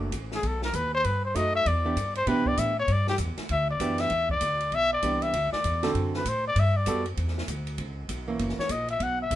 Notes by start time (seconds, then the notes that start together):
Already playing: F#1
0.12 A1, kick, hi-hat pedal, ride
0.32 G#4, snare
0.43 B1 A4, kick, ride
0.62 A#4, snare
0.73 D#2 B4, kick, hi-hat pedal, ride
0.94 C5
1.04 G2 B4, kick, ride
1.25 C5
1.34 F#2 A3 D#4 F#4 D#5, kick, hi-hat pedal, ride
1.55 E5
1.66 E2 D5, kick, ride
1.85 E3 B3 D4 G4
1.96 G2, kick, hi-hat pedal, ride
2.15 C5, ride
2.26 B2 E3 B3 D4 G4 B4, kick, ride
2.46 D5, kick
2.57 A2 E5, kick, hi-hat pedal, ride
2.79 C#5
2.88 G2, kick, ride
2.92 D5
3.07 G4, snare
3.18 E2, kick, hi-hat pedal, ride
3.38 muted upright bass stroke, snare, ride
3.49 D2 E5, kick, ride
3.71 D5
3.80 F#2 E3 B3 D4 G4, kick, hi-hat pedal, ride
3.98 E5, snare, ride
4.10 E2, kick, ride
4.29 D5, kick
4.41 D2, kick, hi-hat pedal, ride
4.60 ride
4.72 B1 E5, kick, ride
4.93 D5
5.02 C2 E3 B3 D4 G4, kick, hi-hat pedal, ride
5.22 E5, ride
5.33 D2, kick, ride
5.52 D5, muted upright bass stroke, snare
5.64 E2, kick, hi-hat pedal, ride
5.83 D3 C4 F#4 A4, snare, ride
5.94 F#2, kick, ride
6.14 B4, snare
6.25 A2 C5, kick, hi-hat pedal, ride
6.48 D5
6.55 G2, kick, ride
6.60 E5
6.76 D5
6.86 F#2 G3 B3 F#4 A4, kick, hi-hat pedal, ride
7.06 ride
7.17 E2, kick, ride
7.28 snare
7.38 snare
7.48 D2, kick, hi-hat pedal, ride
7.67 ride
7.78 C#2, kick, ride
8.09 B1, kick, hi-hat pedal, ride
8.28 E3 A#3 C#4
8.39 F#1, kick, ride
8.49 snare
8.58 C#5, muted upright bass stroke, snare
8.69 A#1 D#5, kick, hi-hat pedal, ride
8.88 E5, ride
9.00 B1 F#5, kick, ride
9.22 E5
9.31 C2, kick, hi-hat pedal, ride